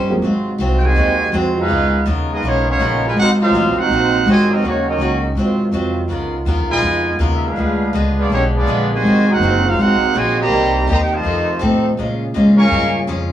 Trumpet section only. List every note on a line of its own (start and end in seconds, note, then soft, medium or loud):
0.76 0.84 G5 medium
0.84 1.34 F#4 loud
0.84 1.34 C5 loud
0.84 1.34 D#5 loud
0.84 1.34 G#5 loud
1.59 2.05 D#4 loud
1.59 2.05 G#4 medium
1.59 2.05 B4 medium
1.59 2.05 F5 medium
2.31 2.43 B3 medium
2.31 2.43 F4 medium
2.31 2.43 G#4 medium
2.31 2.44 D#5 loud
2.46 2.68 B3 medium
2.46 2.68 F4 medium
2.46 2.68 G#4 medium
2.46 2.68 C#5 loud
2.69 3.02 B3 medium
2.69 3.02 F4 medium
2.69 3.02 G#4 medium
2.69 3.02 C#5 loud
3.06 3.17 F4 medium
3.06 3.17 B4 medium
3.06 3.18 D#5 medium
3.06 3.17 G#5 loud
3.19 3.30 D#4 medium
3.19 3.30 A#4 medium
3.19 3.30 C5 loud
3.19 3.29 F#5 loud
3.40 3.75 D#4 medium
3.40 3.74 A#4 medium
3.40 3.75 C5 medium
3.40 3.74 F5 loud
3.77 4.27 D#4 loud
3.77 4.27 A#4 medium
3.77 4.27 C5 loud
3.77 4.27 F#5 loud
4.28 4.49 F#4 medium
4.28 4.49 C5 medium
4.28 4.49 D#5 loud
4.28 4.49 G#5 loud
4.51 4.64 C4 medium
4.51 4.65 F#4 medium
4.51 4.64 A#4 medium
4.51 4.64 D#5 medium
4.66 4.88 A#3 medium
4.66 4.88 D#4 medium
4.66 4.88 F#4 medium
4.66 4.88 C#5 medium
4.89 5.22 C#4 medium
4.89 5.22 F#4 medium
4.89 5.22 A#4 medium
4.89 5.22 D#5 medium
6.70 7.17 F4 medium
6.70 7.17 B4 medium
6.70 7.17 D#5 medium
6.70 7.17 G#5 loud
7.35 7.43 E5 medium
7.46 7.95 D4 medium
7.46 7.95 G#4 medium
7.46 7.95 B4 medium
7.46 7.95 F5 loud
8.17 8.30 B3 medium
8.17 8.30 F4 medium
8.17 8.30 G#4 medium
8.17 8.30 D5 medium
8.32 8.42 A#3 medium
8.32 8.42 E4 medium
8.32 8.43 G4 medium
8.32 8.42 C#5 medium
8.56 8.89 B3 medium
8.56 8.89 F4 medium
8.56 8.89 G#4 medium
8.56 8.89 D5 loud
8.94 9.29 F#4 medium
8.94 9.29 C5 medium
8.94 9.29 D#5 medium
8.94 9.29 G#5 loud
9.30 9.65 D#4 medium
9.30 9.65 A#4 medium
9.30 9.65 C5 medium
9.30 9.66 F#5 loud
9.66 9.78 D#4 medium
9.66 9.78 A#4 medium
9.66 9.78 C5 medium
9.66 9.79 F5 loud
9.79 10.15 D#4 loud
9.79 10.15 A#4 loud
9.79 10.15 C5 medium
9.79 10.15 F#5 loud
10.15 10.38 F#4 loud
10.15 10.38 C5 loud
10.15 10.38 D#5 loud
10.15 10.38 G#5 loud
10.40 10.85 G4 loud
10.40 10.86 C5 loud
10.40 10.86 D#5 medium
10.40 10.86 A#5 loud
10.91 10.96 G4 medium
10.91 10.97 C5 medium
10.91 10.97 D#5 medium
10.91 10.96 A#5 loud
11.01 11.10 G5 medium
11.12 11.62 F4 loud
11.12 11.62 C5 medium
11.12 11.62 D#5 medium
11.12 11.62 A5 loud
12.57 13.04 A#4 loud
12.57 13.04 F5 loud
12.57 13.04 G#5 loud
12.57 13.05 C#6 loud